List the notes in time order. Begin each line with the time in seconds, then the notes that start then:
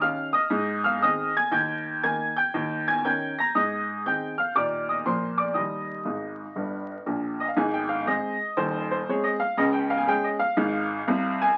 0.02 D#3 C#4 G4 F5 F6
0.33 D#5 D#6
0.50 G#2
0.84 F5 F6
1.02 D#3 C4 G#4 D#5 D#6
1.37 G#5 G#6
1.52 D#2 G5 G6
2.03 D#3 A#3 A#4 G#5 G#6
2.37 G5 G6
2.54 D#2
2.88 G#5 G#6
3.04 D#3 C#4 A#4 G5 G6
3.39 A#5 A#6
3.55 G#2 D#5 D#6
4.06 D#3 C4 G#4 G5 G6
4.38 F5 F6
4.55 A#2 D#3 A#3 G4 D5 D6
4.89 D#5 D#6
5.05 A#2 F3 A#3 A#4 C5 C6
5.38 D5 D6
5.54 D#2 G3 D#5 D#6
6.05 G#1 G#2
6.56 G1 G2
7.06 A#1 A#2
7.40 D#5
7.48 F5
7.57 G#1 G#2 G#5
7.74 G5
7.89 F5
8.06 G#3 C4 G#4 D#5
8.57 D#1 D#2 C5
8.91 C5
9.09 G#3 C4 G#4 C#5
9.24 D#5
9.40 F5
9.57 C#2 C#3 D#5
9.73 G5
9.90 F5
9.97 G#5
10.07 G#3 C#4 G#4 G5
10.24 D#5
10.39 F5
10.57 G#1 G#2
11.08 C2 C3
11.42 G#5